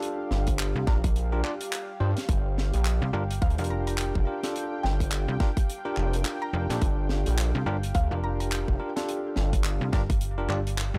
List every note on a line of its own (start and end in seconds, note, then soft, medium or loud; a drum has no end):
0.00 0.85 D4 medium
0.00 0.84 F4 medium
0.00 0.85 G4 medium
0.00 10.98 G4 medium
0.00 0.85 A4 loud
0.00 10.98 F5 medium
0.00 closed hi-hat medium
0.31 0.73 G1 loud
0.31 snare soft
0.47 kick medium
0.47 closed hi-hat medium
0.59 clap loud
0.59 closed hi-hat medium
0.76 0.85 C2 loud
0.87 1.42 A#1 medium
0.87 0.96 D4 loud
0.87 0.96 F4 loud
0.87 0.97 G4 medium
0.87 0.96 A#4 loud
0.87 1.32 A#5 medium
0.87 kick loud
0.87 snare soft
1.04 kick loud
1.04 closed hi-hat medium
1.16 closed hi-hat medium
1.32 1.42 D4 medium
1.32 1.42 F4 medium
1.32 1.42 G4 medium
1.32 1.42 A#4 loud
1.44 1.53 D4 medium
1.44 1.53 F4 medium
1.44 1.53 G4 medium
1.44 1.53 D5 medium
1.44 clap medium
1.61 closed hi-hat medium
1.72 clap loud
1.72 closed hi-hat medium
2.00 2.15 G2 medium
2.00 2.10 D4 medium
2.00 2.10 F4 medium
2.00 2.10 G4 medium
2.00 2.10 C5 loud
2.17 snare soft
2.17 closed hi-hat medium
2.29 2.71 G1 loud
2.29 10.98 G5 medium
2.29 kick loud
2.29 closed hi-hat medium
2.58 snare soft
2.74 3.00 A#1 loud
2.74 closed hi-hat medium
2.85 clap loud
2.85 closed hi-hat medium
3.02 3.12 C2 loud
3.13 3.40 G1 loud
3.13 3.23 D4 loud
3.13 3.23 F4 medium
3.13 3.23 G4 medium
3.13 3.23 A#4 loud
3.31 closed hi-hat medium
3.42 3.56 D2 medium
3.42 3.53 F5 medium
3.42 kick loud
3.42 closed hi-hat soft
3.50 closed hi-hat soft
3.58 4.13 F1 loud
3.58 4.24 D4 loud
3.58 4.24 F4 medium
3.58 4.24 G4 medium
3.58 4.24 A#4 loud
3.58 3.66 F5 medium
3.58 closed hi-hat medium
3.64 closed hi-hat medium
3.70 3.81 A#5 medium
3.87 3.95 A#5 medium
3.87 closed hi-hat medium
3.98 clap loud
3.98 closed hi-hat medium
4.15 4.25 F1 loud
4.15 kick medium
4.27 4.40 D4 medium
4.27 4.40 F4 medium
4.27 4.40 G4 medium
4.27 4.40 A#4 medium
4.43 5.37 D4 medium
4.43 5.37 F4 medium
4.43 5.37 G4 medium
4.43 5.37 A4 loud
4.43 snare soft
4.43 closed hi-hat medium
4.56 closed hi-hat medium
4.83 5.26 G1 loud
4.83 5.40 G5 loud
4.83 snare soft
5.00 kick medium
5.00 closed hi-hat medium
5.11 clap loud
5.11 closed hi-hat medium
5.28 5.38 C2 loud
5.40 5.49 D4 loud
5.40 5.49 F4 medium
5.40 5.49 G4 loud
5.40 5.49 A#4 loud
5.40 kick loud
5.40 snare soft
5.57 kick loud
5.57 closed hi-hat medium
5.70 closed hi-hat medium
5.85 6.51 D4 medium
5.85 6.51 F4 medium
5.85 6.51 G4 medium
5.85 6.51 A#4 loud
5.97 6.23 F1 medium
5.97 clap medium
6.13 closed hi-hat medium
6.25 clap loud
6.25 closed hi-hat medium
6.42 6.98 A#5 medium
6.53 6.67 F1 loud
6.53 6.66 D4 medium
6.53 6.66 F4 medium
6.53 6.66 G4 medium
6.53 6.66 A#4 medium
6.70 6.80 A#1 loud
6.70 7.64 D4 medium
6.70 7.64 F4 medium
6.70 7.64 G4 medium
6.70 7.64 A4 medium
6.70 snare soft
6.70 closed hi-hat medium
6.81 7.24 G1 loud
6.81 kick loud
6.81 closed hi-hat medium
7.09 snare soft
7.26 7.53 A#1 loud
7.26 closed hi-hat medium
7.38 clap loud
7.38 closed hi-hat medium
7.55 7.65 C2 loud
7.66 7.93 G1 loud
7.66 7.76 D4 loud
7.66 7.76 F4 medium
7.66 7.76 G4 loud
7.66 7.76 A#4 loud
7.83 closed hi-hat medium
7.95 8.09 D2 loud
7.95 8.06 F5 medium
7.95 kick loud
7.95 closed hi-hat medium
8.11 8.65 F1 medium
8.11 8.77 D4 medium
8.11 8.77 F4 medium
8.11 8.77 G4 medium
8.11 8.77 A#4 loud
8.11 8.19 F5 medium
8.24 8.34 A#5 medium
8.40 8.47 A#5 medium
8.40 closed hi-hat medium
8.51 8.71 G5 loud
8.51 clap loud
8.51 closed hi-hat medium
8.68 8.78 F1 loud
8.68 kick medium
8.79 8.92 D4 medium
8.79 8.92 F4 medium
8.79 8.92 G4 medium
8.79 8.92 A#4 medium
8.96 9.90 D4 medium
8.96 9.90 F4 medium
8.96 9.90 G4 medium
8.96 9.90 A4 medium
8.96 snare soft
8.96 closed hi-hat medium
9.09 closed hi-hat medium
9.36 9.79 G1 loud
9.36 snare soft
9.53 kick medium
9.53 closed hi-hat medium
9.64 clap loud
9.64 closed hi-hat medium
9.81 9.91 C2 loud
9.93 10.48 G1 loud
9.93 10.02 D4 loud
9.93 10.02 F4 medium
9.93 10.02 G4 loud
9.93 10.02 A#4 loud
9.93 10.38 A#5 loud
9.93 kick loud
9.93 snare soft
10.10 kick loud
10.10 closed hi-hat medium
10.21 closed hi-hat medium
10.38 10.47 D4 loud
10.38 10.47 F4 medium
10.38 10.47 G4 medium
10.38 10.47 A#4 loud
10.49 10.92 G1 loud
10.49 10.59 D4 medium
10.49 10.59 F4 medium
10.49 10.59 G4 medium
10.49 10.59 D5 medium
10.49 clap medium
10.67 closed hi-hat medium
10.78 clap loud
10.78 closed hi-hat medium
10.94 10.98 G1 loud